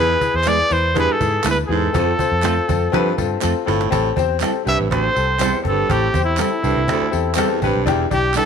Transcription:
Already playing: E2 B3 E4 G#4
0.00 B4
0.20 B3 E4 G#4, cajon bass, tambourine
0.34 E2 C5
0.44 G#3 B3 E4 G#4, cajon slap, clap, tambourine
0.48 D5
0.69 E2 B3 E4 B4 C5, tambourine
0.94 G2 B3 E4 G#4, cajon bass, cajon slap, tambourine
1.00 B4
1.12 A4
1.20 G#2 B3 E4 G#4, cajon bass, tambourine
1.44 D2 G#3 B3 E4 G#4 B4, cajon slap, clap, tambourine
1.51 B4
1.67 E2 B3 E4 G#4, cajon slap
1.71 G#2
1.75 A4
1.82 cajon slap
1.93 F2 C4 F4 A4, cajon bass, cajon slap, tambourine
2.18 C4 F4 C5, cajon bass, tambourine
2.32 F2
2.43 A3 C4 F4 A4 C5, cajon slap, clap, tambourine
2.68 F2 C4 F4 A4, cajon bass, tambourine
2.92 G2 F3 C4 F4 B4, cajon bass, cajon slap
3.17 G2 C4 F4 A4, cajon bass, tambourine
3.41 F2 A3 C4 F4 A4, cajon slap, clap, tambourine
3.65 G1 A2 C4 F4 A4, cajon slap, tambourine
3.81 cajon slap
3.90 A1 A2 C4 G4 A4, cajon bass, cajon slap, tambourine
4.16 E2 C4 G4 C5, cajon bass, tambourine
4.30 cajon slap
4.40 G3 C4 E4 G4 A4, cajon slap, clap, tambourine
4.65 C2 G2 C4 G4 B4 E5, cajon slap, tambourine
4.80 A1
4.89 A1 D2 C4 G4 A4 C5, cajon bass, cajon slap
5.13 C2 C4 G4 A4, tambourine
5.38 E2 G3 C4 E4 G4 A4 C5, cajon slap, clap, tambourine
5.61 G1 G2 C4 G4 A4, cajon bass
5.66 A4, cajon slap
5.89 A1 A2 C4 G4 A4, cajon bass, cajon slap, tambourine
6.13 E2 C4 G4 C5, cajon bass, tambourine
6.24 E4, cajon slap
6.36 G3 C4 E4 G4 A4, cajon slap, clap, tambourine
6.40 E4
6.62 C2 G2 C4 G4 A4, cajon slap, tambourine
6.75 C2 G3 C4 E4 A4
6.86 D2 C4 G4 A4, cajon bass, cajon slap, tambourine
7.02 muted picked electric bass stroke
7.11 E2 C4 G4 A4, tambourine
7.35 E2 G3 C4 E4 G4 A4, cajon slap, clap, tambourine
7.61 A1 G2 C4 G4 B4, cajon bass, cajon slap, tambourine
7.76 B1
7.86 E1 E2 D4 E4 G4, cajon bass, cajon slap, tambourine
8.11 B1 D4 E4 G4, cajon bass, tambourine
8.34 G3 D4 E4 G4 A4 B4, cajon slap, clap, tambourine

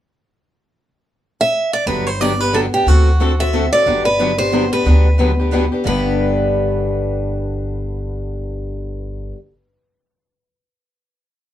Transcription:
1.41 E5
1.73 D5
1.86 G1 D3 F#3 B3 D4 G4 B4
2.07 C5
2.20 D3 F#3 B3 D4 G4 D5
2.40 B3 D4 G4 B4
2.53 D3 F#3 B3 D4 G4 A4
2.74 B3 D4 G4
2.86 D2 D3 A3 C4 F#4 A4
3.20 D3 A3 C4 F#4 A4
3.40 C4 F#4 A4 E5
3.53 D3 A3 C4 F#4 A4
3.73 C4 F#4 A4 D5
3.86 G1 D3 F#3 B3 D4 G4
4.05 B4
4.19 D3 F#3 B3 D4 G4
4.38 B3 D4 G4 C5
4.53 D3 F#3 B3 D4 G4
4.72 B3 D4 G4 B4
4.86 D2 D3 F#3 B3 D4 G4
5.19 D3 F#3 B3 D4 G4
5.39 B3 D4 G4
5.53 D3 F#3 B3 D4 G4
5.72 B3 D4 G4
5.85 G1 G2 D3 B3 D4 G4 B4

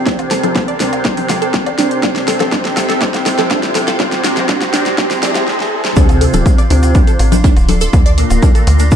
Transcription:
Already playing: C6, riser
0.06 D2 C3 C4 D4 A#4 D5, kick, snare, closed hi-hat
0.19 closed hi-hat, low woodblock
0.31 A4, snare, open hi-hat
0.43 D1 A4, closed hi-hat, low conga
0.56 kick, snare, closed hi-hat, low woodblock
0.68 D5, closed hi-hat
0.80 D2 C3 C4 D4, snare, open hi-hat
0.93 closed hi-hat, low woodblock
1.04 C3 C4 D4, kick, snare, closed hi-hat
1.17 open hi-hat, low conga
1.29 D2 A4, snare, open hi-hat, low conga, low woodblock
1.42 A4, closed hi-hat
1.54 kick, snare, closed hi-hat
1.66 D2 D5, closed hi-hat, low woodblock
1.78 C3 C4 D4, snare, open hi-hat
1.91 closed hi-hat
2.03 D2 C3 C4 D4 G4 E5, kick, snare, closed hi-hat, low woodblock
2.16 snare, closed hi-hat
2.27 A4, snare, open hi-hat
2.40 D1 A4, snare, closed hi-hat, low conga, low woodblock
2.52 C3 C4 D4, kick, snare, closed hi-hat
2.65 snare, closed hi-hat
2.77 D2 A4, snare, open hi-hat, low woodblock
2.89 A4, snare, closed hi-hat
3.01 C3 C4 D4, kick, snare, closed hi-hat
3.14 snare, closed hi-hat, low woodblock
3.26 D2 A4, snare, open hi-hat
3.38 A4, snare, closed hi-hat, low conga
3.50 C3 C4 D4, kick, snare, closed hi-hat, low woodblock
3.63 D2, snare, closed hi-hat
3.75 A4, snare, open hi-hat, low conga
3.88 A4, snare, closed hi-hat, low woodblock
4.00 D2 C3 C4 D4 D5 A#5, kick, snare, closed hi-hat
4.12 snare, closed hi-hat
4.24 C3 C4 D4, snare, open hi-hat, low woodblock
4.37 D1, snare, closed hi-hat, low conga
4.49 C3 C4 D4, kick, snare, closed hi-hat
4.61 snare, closed hi-hat, low woodblock
4.73 C2 C3 C4 D4, snare, open hi-hat
4.86 snare, closed hi-hat
4.98 C3 C4 D4 E4 C5, kick, snare, closed hi-hat, low woodblock
5.11 snare, open hi-hat, low conga
5.23 C2 C3 C4 D4, snare, open hi-hat, low conga
5.35 snare, closed hi-hat, low woodblock
5.47 snare
5.60 snare
5.85 snare
5.96 D2 C3 C4 D4 F4 D5 C6, kick, closed hi-hat, shaker
6.09 closed hi-hat, low woodblock, shaker
6.21 A4, open hi-hat
6.33 D1 A4, closed hi-hat, low conga, shaker
6.46 kick, closed hi-hat, low woodblock, shaker
6.58 D5, closed hi-hat, shaker
6.70 D2 C3 C4 D4, open hi-hat
6.83 closed hi-hat, low woodblock, shaker
6.95 D4, kick, closed hi-hat, shaker
7.07 A4, closed hi-hat, shaker
7.19 A1, open hi-hat, low woodblock
7.32 D4, closed hi-hat, low conga, shaker
7.44 D4, kick, closed hi-hat, shaker
7.57 D1, closed hi-hat, low woodblock, shaker
7.69 A4, open hi-hat, low conga
7.81 A4, closed hi-hat, shaker
7.93 D2 A#5, kick, closed hi-hat, low woodblock, shaker
8.06 D5, closed hi-hat, shaker
8.18 A#2 A#3 D4, open hi-hat
8.30 D1, closed hi-hat, low woodblock, shaker
8.43 D4, kick, closed hi-hat, shaker
8.55 A4, closed hi-hat, shaker
8.67 D2, open hi-hat, low woodblock
8.79 D4, closed hi-hat, shaker
8.91 A2 A3 D4, kick, closed hi-hat, shaker

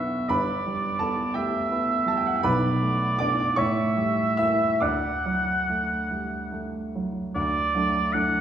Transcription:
Already playing: B1 B2 B3 C#4 D4 B4 C#5 D5 E5 B5 C#6 D6
0.28 G1 G2 B4 D5 B5
0.66 G3
0.99 B3 A4 A5
1.34 A3 G4 E5 G5
1.72 B3
2.06 G3 A5
2.17 G5
2.26 F#5
2.35 G5
2.42 B1 B2 B4 D5 B5
2.82 A3
3.19 B3 D4 D5 D6
3.56 A2 C#5 E5 C#6
3.97 G3
4.37 A#3 E4 E5 E6
4.80 D2 D5 F#5 D6
5.26 F#3
5.70 A3
6.11 G3
6.52 A3
6.95 F#3
7.35 D2 D5
7.75 F#3 A3 D4
8.13 F#3 A3 D4 F#5

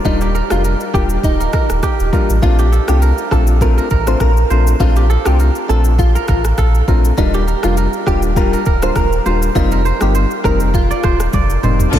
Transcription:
Already playing: A#4 D5
0.05 D#1 G3 A#3 D4 D#4 F4, kick, shaker
0.21 G4, shaker
0.35 A#4, shaker
0.50 F1 G3 A#3 D4 F4, cross-stick, shaker
0.64 A#4, shaker
0.80 shaker
0.93 D#1 G3 A#3 D4 F4 G4, kick, shaker
1.10 shaker
1.23 D1 D#4, kick, shaker
1.40 A#4, shaker
1.53 A#4, kick, cross-stick, shaker
1.70 D#1, cross-stick, shaker
1.83 G4, kick, cross-stick, shaker
2.00 D#1, shaker
2.12 G3 A#3 D4 F4 A#4, kick, shaker
2.29 A1, shaker
2.42 A#1 A3 C4 D4 F4, kick, shaker
2.59 G4, shaker
2.72 A4, shaker
2.88 C2 A3 C4 D4 F4 G4, cross-stick, shaker
3.02 A#4, shaker
3.18 shaker
3.31 A#1 A3 C4 D4 F4 A4, kick, cross-stick, shaker
3.47 shaker
3.61 A3 C4 D4 F4 A#4, kick, shaker
3.78 A#4, shaker
3.90 A1 A#4, kick, shaker
4.07 A3 C4 D4 F4 C5, cross-stick, shaker
4.20 A#1 A#4, kick, cross-stick, shaker
4.37 shaker
4.50 A#1 A3 C4 D4 F4 C5, shaker
4.67 shaker
4.80 A#1 A3 C4 D4 F4, kick, shaker
4.96 G4, shaker
5.10 A4, shaker
5.25 C2 A3 C4 D4 F4 G4, cross-stick, shaker
5.40 A#4, shaker
5.55 shaker
5.69 A#1 A3 C4 D4 F4 A4, shaker
5.85 shaker
5.99 F4, kick, shaker
6.15 A#4, shaker
6.28 A1 A#4, kick, cross-stick, shaker
6.45 cross-stick, shaker
6.58 A#1 A4, kick, cross-stick, shaker
6.75 shaker
6.88 A#1 A3 C4 D4 F4 A#4, kick, shaker
7.05 shaker
7.17 D#1 G3 A#3 D4 D#4 F4, kick, shaker
7.34 G4, shaker
7.47 A#4, shaker
7.63 F1 G3 A#3 D4 F4, cross-stick, shaker
7.77 A#4, shaker
7.93 shaker
8.07 D#1 G3 A#3 D4 F4 G4, kick, cross-stick, shaker
8.22 shaker
8.36 G3 A#3 D4 F4 A#4, kick, shaker
8.53 A#4, shaker
8.66 D1 A#4, kick, shaker
8.82 G3 A#3 D4 F4 C5, cross-stick, shaker
8.96 D#1 A#4, kick, cross-stick, shaker
9.12 shaker
9.25 D#1 G3 A#3 D4 F4 C5, shaker
9.42 shaker
9.55 F1 G3 A#3 C4 D#4 F4, kick, shaker
9.71 A#4, shaker
9.85 C5, shaker
10.01 G1 G3 A#3 C4 D#4 G4, cross-stick, shaker
10.15 C5, shaker
10.31 shaker
10.44 F1 G3 A#3 C4 D#4 A#4, kick, cross-stick, shaker
10.60 shaker
10.74 F4, kick, shaker
10.91 D5, shaker
11.03 D#1 C5, kick, cross-stick, shaker
11.20 cross-stick, shaker
11.33 F1 D5, kick, high tom, shaker
11.50 shaker
11.63 F1 G3 A#3 C4 D#4 C5, mid tom, shaker
11.79 floor tom, shaker
11.93 A#1 D3 F3 A3 A#3 C4 D4 F4 A4, kick, crash, shaker

